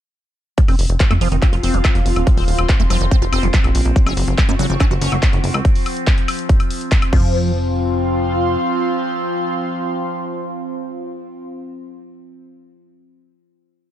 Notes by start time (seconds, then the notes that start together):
0.58 F3 C4, kick, closed hi-hat
0.68 F1 C4, open hi-hat, high woodblock
0.79 F1, open hi-hat
0.87 F1 F4, closed hi-hat
1.00 F3 F5, kick, clap, closed hi-hat
1.11 F2 A3, closed hi-hat, high woodblock
1.21 F1 F3, open hi-hat
1.32 F1 D#3, closed hi-hat
1.42 C4, kick, clap, closed hi-hat, high woodblock
1.53 F1 F4, closed hi-hat
1.63 F1 C4, open hi-hat
1.74 F1 D#3, closed hi-hat
1.85 F3, kick, clap, closed hi-hat, high woodblock
1.94 F1 C6, closed hi-hat
2.06 F1, open hi-hat
2.16 D#1, closed hi-hat, high woodblock
2.27 F3, kick, closed hi-hat
2.37 D#1 C4, open hi-hat
2.48 D#1, open hi-hat
2.59 D#1, closed hi-hat, high woodblock
2.69 F3, kick, clap, closed hi-hat
2.80 F1 A3, closed hi-hat
2.90 F1 F3, open hi-hat, high woodblock
3.01 F1 D#3
3.11 C4, kick, closed hi-hat
3.22 F1 F4, closed hi-hat
3.32 F1 C4, open hi-hat, high woodblock
3.43 F1 D#3, closed hi-hat
3.54 F3, kick, clap, closed hi-hat
3.64 A#1, closed hi-hat, high woodblock
3.75 A#1, open hi-hat
3.85 A#1, closed hi-hat
3.96 F#3, kick, closed hi-hat
4.06 F#1 C#4, open hi-hat, high woodblock
4.17 F#1, open hi-hat
4.26 F#1 C#6, closed hi-hat
4.38 F#3, kick, clap, closed hi-hat, high woodblock
4.49 F#2 A#3, closed hi-hat
4.59 F#1 F#3 F#5, open hi-hat
4.70 F#1 F3, closed hi-hat
4.80 C#4, kick, clap, closed hi-hat, high woodblock
4.91 F#1 F#4, closed hi-hat
5.01 F#1 C#4, open hi-hat
5.12 F#1 F3, closed hi-hat, high woodblock
5.23 F#3, kick, clap, closed hi-hat
5.33 F#1, closed hi-hat
5.44 F#1, open hi-hat
5.54 C#2, closed hi-hat, high woodblock
5.65 kick, closed hi-hat
5.75 open hi-hat
5.86 open hi-hat, high woodblock
5.97 closed hi-hat
6.07 kick, clap, closed hi-hat
6.18 closed hi-hat
6.28 open hi-hat, high woodblock
6.39 closed hi-hat
6.49 kick, closed hi-hat
6.60 closed hi-hat, high woodblock
6.71 open hi-hat
6.81 closed hi-hat
6.92 kick, clap, closed hi-hat
7.02 closed hi-hat, high woodblock
7.13 F1 F3 C4, kick, crash
7.19 F4
7.46 F5
7.53 C6